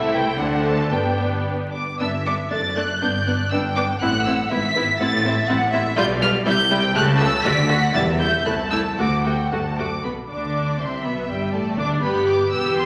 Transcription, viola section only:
0.00 0.38 A3 medium
0.00 0.38 E4 medium
0.39 0.91 A3 medium
0.39 0.91 D4 medium
0.92 1.79 B3 medium
0.92 1.78 D4 medium
2.00 2.08 B3 medium
2.00 2.08 D4 medium
2.26 2.34 B3 medium
2.26 2.34 D4 medium
2.51 2.59 A3 medium
2.51 2.59 D4 medium
2.76 2.84 A3 medium
2.76 2.84 D4 medium
3.02 3.10 B3 medium
3.02 3.10 D4 medium
3.27 3.35 B3 medium
3.27 3.35 D4 medium
3.52 3.60 B3 medium
3.52 3.60 D4 medium
3.77 3.85 B3 medium
3.77 3.85 D4 medium
4.01 4.10 C4 medium
4.01 4.09 E4 medium
4.26 4.34 C4 medium
4.26 4.34 E4 medium
4.51 4.59 B3 medium
4.51 4.59 E4 medium
4.76 4.84 B3 medium
4.76 4.84 E4 medium
5.00 5.08 C4 medium
5.00 5.08 E4 medium
5.25 5.33 C4 medium
5.25 5.33 E4 medium
5.49 5.57 C4 medium
5.49 5.57 E4 medium
5.73 5.81 C4 medium
5.73 5.81 E4 medium
5.97 6.05 G3 medium
5.97 6.05 F4 medium
6.22 6.30 G3 medium
6.22 6.30 F4 medium
6.46 6.54 G3 medium
6.46 6.54 E4 medium
6.70 6.78 G3 medium
6.70 6.78 E4 medium
6.95 7.03 A3 loud
6.95 7.03 G4 loud
7.20 7.28 A3 medium
7.20 7.28 G4 medium
7.45 7.53 A3 medium
7.45 7.53 F#4 medium
7.69 7.77 A3 medium
7.69 7.77 F#4 medium
7.94 8.02 G3 medium
7.94 8.02 E4 medium
8.20 8.28 G3 medium
8.20 8.28 E4 medium
8.45 8.53 A3 medium
8.45 8.53 E4 medium
8.72 8.80 A3 medium
8.72 8.80 E4 medium
8.99 9.07 A3 medium
8.99 9.07 F#4 medium
9.26 9.34 A3 medium
9.26 9.34 F#4 medium
9.52 9.60 A3 medium
9.52 9.60 F#4 medium
9.79 9.87 A3 medium
9.79 9.87 F#4 medium
10.04 10.12 B3 soft
10.30 10.79 D4 medium
10.80 11.05 C4 medium
11.05 11.29 B3 medium
11.29 11.53 G3 medium
11.53 11.78 A3 medium
11.78 12.02 D4 medium
12.02 12.49 B3 medium
12.02 12.49 G4 medium
12.52 12.86 B3 medium
12.52 12.86 G4 medium

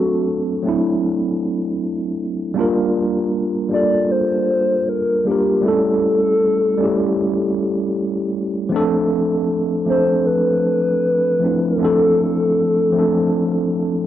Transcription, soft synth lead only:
0.00 1.04 F#4 medium
3.73 4.13 D5 loud
4.11 4.90 C5 loud
4.89 5.29 A#4 loud
5.27 5.67 G4 medium
5.65 7.95 A4 loud
9.89 10.28 C5 loud
10.27 11.67 B4 loud
11.66 14.07 A4 loud

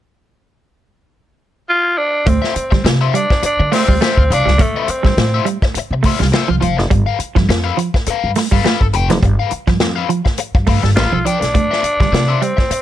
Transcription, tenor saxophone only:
1.69 1.99 F4 loud
1.97 2.29 D4 loud
2.27 2.85 C4 medium
3.14 3.41 D4 medium
3.45 3.74 D4 loud
3.73 4.01 C4 medium
4.02 4.35 C4 medium
4.33 4.63 D4 loud
4.61 4.91 A3 medium
4.90 5.47 C4 loud
10.96 11.27 F4 loud
11.25 12.44 D4 loud
12.42 12.82 C4 medium

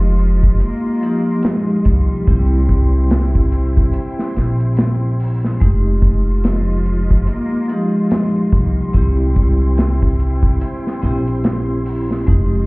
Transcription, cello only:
0.00 0.59 F3 loud
0.64 1.48 A#3 loud
1.47 1.89 G#3 loud
1.88 3.54 G3 medium
6.47 7.31 F3 medium
7.30 7.73 A#3 loud
7.71 8.56 G#3 loud
8.55 10.21 G3 loud

